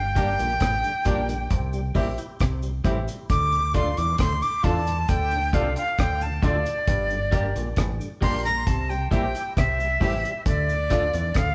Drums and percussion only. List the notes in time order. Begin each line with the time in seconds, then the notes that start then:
0.16 kick, closed hi-hat, cabasa
0.39 closed hi-hat, cabasa
0.60 kick, cross-stick, closed hi-hat, cabasa
0.84 cabasa
1.05 kick, closed hi-hat, cabasa
1.29 closed hi-hat, cabasa
1.50 kick, closed hi-hat, cabasa
1.73 cabasa
1.95 kick, open hi-hat, cabasa
2.18 closed hi-hat, cabasa
2.40 kick, cross-stick, closed hi-hat, cabasa
2.63 cabasa
2.85 kick, closed hi-hat, cabasa
3.08 closed hi-hat, cabasa
3.30 kick, closed hi-hat, cabasa
3.52 cabasa
3.74 kick, closed hi-hat, cabasa
3.97 closed hi-hat, cabasa
4.18 kick, cross-stick, closed hi-hat, cabasa
4.42 cabasa
4.63 kick, closed hi-hat, cabasa
4.87 closed hi-hat, cabasa
5.08 kick, closed hi-hat, cabasa
5.31 cabasa
5.53 kick, closed hi-hat, cabasa
5.76 closed hi-hat, cabasa
5.98 kick, cross-stick, closed hi-hat, cabasa
6.21 cabasa
6.43 kick, closed hi-hat, cabasa
6.66 closed hi-hat, cabasa
6.87 kick, closed hi-hat, cabasa
7.10 cabasa
7.32 kick, closed hi-hat, cabasa
7.56 closed hi-hat, cabasa
7.76 kick, cross-stick, closed hi-hat, cabasa
8.01 cabasa
8.22 kick, open hi-hat, cabasa
8.45 closed hi-hat, cabasa
8.67 kick, closed hi-hat, cabasa
8.91 cabasa
9.11 kick, closed hi-hat, cabasa
9.35 closed hi-hat, cabasa
9.57 kick, cross-stick, closed hi-hat, cabasa
9.80 cabasa
10.01 kick, open hi-hat, cabasa
10.25 closed hi-hat, cabasa
10.46 kick, closed hi-hat, cabasa
10.69 cabasa
10.90 kick, cross-stick, closed hi-hat, cabasa
11.13 closed hi-hat, cabasa
11.34 kick, cross-stick, closed hi-hat, cabasa